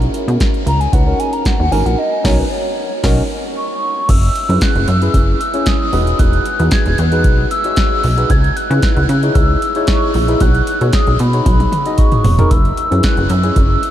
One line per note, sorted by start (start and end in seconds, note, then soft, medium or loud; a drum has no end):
0.00 0.61 C#4 medium
0.00 0.61 D#4 medium
0.00 0.61 F#4 medium
0.00 0.11 A#4 medium
0.00 0.62 A#4 medium
0.00 closed hi-hat soft
0.14 closed hi-hat medium
0.28 0.38 B2 loud
0.28 closed hi-hat medium
0.40 kick loud
0.40 snare loud
0.40 closed hi-hat medium
0.54 closed hi-hat soft
0.66 0.88 C#2 loud
0.66 0.82 A#5 loud
0.66 closed hi-hat medium
0.80 0.94 G#5 loud
0.80 closed hi-hat medium
0.93 1.14 C#2 medium
0.93 1.02 C#4 medium
0.93 1.03 D#4 medium
0.93 1.03 F#4 medium
0.93 1.03 B4 loud
0.93 1.21 F#5 loud
0.93 kick loud
0.93 closed hi-hat medium
1.06 1.52 C#4 medium
1.06 1.52 D#4 medium
1.06 1.52 F#4 medium
1.06 1.52 A#4 medium
1.20 1.35 G#5 loud
1.20 closed hi-hat medium
1.33 1.47 A#5 loud
1.33 closed hi-hat medium
1.45 1.58 F#5 loud
1.45 kick loud
1.45 snare medium
1.45 closed hi-hat medium
1.59 1.70 D#2 medium
1.59 1.73 F#5 loud
1.71 1.83 G#1 medium
1.71 1.98 C#4 loud
1.71 1.98 D#4 medium
1.71 1.98 F#4 medium
1.71 1.99 A#4 loud
1.71 1.87 G#5 loud
1.71 open hi-hat medium
1.86 1.96 A#1 medium
1.86 2.00 F#5 loud
1.86 closed hi-hat medium
1.98 2.26 D#5 loud
2.24 2.43 B1 loud
2.24 2.42 C#4 loud
2.24 2.43 D#4 loud
2.24 2.43 F#4 loud
2.24 2.43 A#4 loud
2.24 2.41 C#5 medium
2.24 kick loud
2.24 snare loud
2.24 crash medium
2.39 2.52 B4 medium
2.51 3.30 C#5 medium
3.03 3.22 B1 loud
3.03 3.22 C#4 loud
3.03 3.22 D#4 loud
3.03 3.22 F#4 loud
3.03 3.22 A#4 loud
3.03 kick loud
3.03 snare loud
3.03 crash medium
3.56 4.11 C#6 loud
4.09 4.30 F#1 loud
4.09 4.63 E6 loud
4.09 kick loud
4.09 closed hi-hat loud
4.09 crash loud
4.23 closed hi-hat soft
4.36 closed hi-hat medium
4.49 4.59 F#2 loud
4.49 4.85 C#4 medium
4.49 4.85 E4 medium
4.49 4.85 G#4 medium
4.49 4.85 B4 medium
4.49 closed hi-hat medium
4.61 4.89 F#6 loud
4.61 kick loud
4.61 snare loud
4.61 closed hi-hat loud
4.75 4.86 F#1 loud
4.75 closed hi-hat soft
4.88 5.09 F#2 loud
4.88 5.39 E6 loud
4.88 closed hi-hat medium
5.02 5.38 C#4 medium
5.02 5.38 E4 medium
5.02 5.38 G#4 medium
5.02 5.38 B4 medium
5.02 closed hi-hat medium
5.14 5.35 F#1 medium
5.14 kick loud
5.14 closed hi-hat loud
5.40 5.69 E6 loud
5.40 closed hi-hat medium
5.54 5.90 C#4 medium
5.54 5.90 E4 medium
5.54 5.90 G#4 medium
5.54 5.90 C#5 medium
5.54 closed hi-hat medium
5.66 6.19 D#6 loud
5.66 kick loud
5.66 snare loud
5.66 closed hi-hat medium
5.93 6.14 E1 medium
5.93 6.45 D#4 medium
5.93 6.46 F#4 medium
5.93 6.46 G#4 medium
5.93 6.46 B4 loud
5.93 open hi-hat medium
6.07 closed hi-hat medium
6.19 6.41 E1 loud
6.19 6.74 F#6 loud
6.19 kick loud
6.19 closed hi-hat medium
6.33 closed hi-hat soft
6.46 closed hi-hat medium
6.59 6.70 E2 loud
6.59 6.95 D#4 medium
6.59 6.95 F#4 medium
6.59 6.96 G#4 medium
6.59 6.96 B4 medium
6.59 closed hi-hat medium
6.71 7.00 G#6 loud
6.71 kick loud
6.71 snare loud
6.71 closed hi-hat loud
6.86 6.96 E1 loud
6.86 closed hi-hat soft
6.98 7.26 E2 loud
6.98 7.51 F#6 loud
6.98 closed hi-hat medium
7.12 7.48 D#4 medium
7.12 7.48 F#4 medium
7.12 7.48 G#4 medium
7.12 7.48 B4 medium
7.12 closed hi-hat medium
7.24 7.46 B1 loud
7.24 kick loud
7.24 closed hi-hat loud
7.51 8.32 E6 loud
7.51 closed hi-hat medium
7.64 8.01 D#4 medium
7.64 8.01 F#4 medium
7.64 8.01 G#4 medium
7.64 8.01 C#5 medium
7.64 closed hi-hat medium
7.76 kick loud
7.76 snare loud
7.76 closed hi-hat medium
8.04 8.25 B1 loud
8.04 open hi-hat medium
8.18 8.30 D#4 loud
8.18 8.30 F#4 medium
8.18 8.30 G#4 medium
8.18 8.30 B4 loud
8.18 closed hi-hat medium
8.30 8.51 C#2 loud
8.30 8.58 G#6 loud
8.30 kick loud
8.30 closed hi-hat loud
8.44 closed hi-hat soft
8.56 9.36 F#6 loud
8.56 closed hi-hat medium
8.70 8.80 C#3 loud
8.70 9.06 D#4 medium
8.70 9.06 E4 medium
8.70 9.06 G#4 medium
8.70 9.06 B4 medium
8.70 closed hi-hat medium
8.82 kick loud
8.82 snare loud
8.82 closed hi-hat loud
8.97 9.07 C#2 loud
8.97 closed hi-hat soft
9.09 9.30 C#3 loud
9.09 closed hi-hat medium
9.23 9.59 D#4 medium
9.23 9.59 E4 medium
9.23 9.59 G#4 medium
9.23 9.59 C#5 medium
9.23 closed hi-hat medium
9.35 9.57 C#2 loud
9.35 9.87 E6 loud
9.35 kick loud
9.35 closed hi-hat medium
9.62 closed hi-hat medium
9.75 10.12 D#4 medium
9.75 10.12 E4 medium
9.75 10.12 G#4 medium
9.75 10.12 C#5 loud
9.75 closed hi-hat medium
9.87 10.16 C#6 loud
9.87 kick loud
9.87 snare loud
9.87 closed hi-hat medium
10.14 10.36 A#1 loud
10.14 10.42 E6 loud
10.14 open hi-hat medium
10.28 10.40 D#4 medium
10.28 10.41 E4 medium
10.28 10.41 G#4 medium
10.28 10.41 B4 loud
10.28 closed hi-hat medium
10.40 10.62 B1 loud
10.40 10.92 F#6 loud
10.40 kick loud
10.40 closed hi-hat loud
10.55 closed hi-hat soft
10.67 closed hi-hat medium
10.81 10.91 B2 loud
10.81 11.17 D#4 medium
10.81 11.17 F#4 medium
10.81 11.17 G#4 medium
10.81 11.17 C#5 medium
10.81 closed hi-hat medium
10.93 11.21 D#6 medium
10.93 kick loud
10.93 snare loud
10.93 closed hi-hat loud
11.07 11.17 B1 medium
11.07 closed hi-hat soft
11.19 11.41 B2 loud
11.19 12.00 B5 loud
11.19 closed hi-hat medium
11.33 11.69 D#4 medium
11.33 11.69 F#4 medium
11.33 11.70 G#4 medium
11.33 11.70 C#5 medium
11.33 closed hi-hat medium
11.46 11.67 B1 loud
11.46 kick loud
11.46 closed hi-hat loud
11.46 high tom medium
11.60 closed hi-hat soft
11.60 high tom medium
11.72 closed hi-hat medium
11.72 mid tom medium
11.86 12.22 D#4 medium
11.86 12.22 F#4 medium
11.86 12.22 G#4 medium
11.86 12.22 D#5 medium
11.86 closed hi-hat medium
11.98 12.52 C#6 medium
11.98 kick loud
11.98 closed hi-hat medium
12.12 closed hi-hat soft
12.12 mid tom medium
12.24 12.46 E1 loud
12.24 floor tom loud
12.24 open hi-hat medium
12.38 12.51 D#4 medium
12.38 12.51 F#4 medium
12.38 12.51 G#4 medium
12.38 12.51 A#4 loud
12.38 closed hi-hat medium
12.38 floor tom loud
12.50 12.72 F#1 loud
12.50 13.05 E6 loud
12.50 kick loud
12.50 closed hi-hat loud
12.65 closed hi-hat soft
12.77 closed hi-hat medium
12.91 13.02 F#2 loud
12.91 13.27 C#4 medium
12.91 13.27 E4 medium
12.91 13.27 G#4 medium
12.91 13.27 B4 medium
12.91 closed hi-hat medium
13.03 13.32 F#6 loud
13.03 kick loud
13.03 snare loud
13.03 closed hi-hat loud
13.17 13.28 F#1 loud
13.17 closed hi-hat soft
13.30 13.51 F#2 loud
13.30 13.91 E6 loud
13.30 closed hi-hat medium
13.43 13.80 C#4 medium
13.43 13.80 E4 medium
13.43 13.80 G#4 medium
13.43 13.80 C#5 medium
13.43 closed hi-hat medium
13.56 13.78 F#1 loud
13.56 kick loud
13.56 closed hi-hat loud
13.83 closed hi-hat medium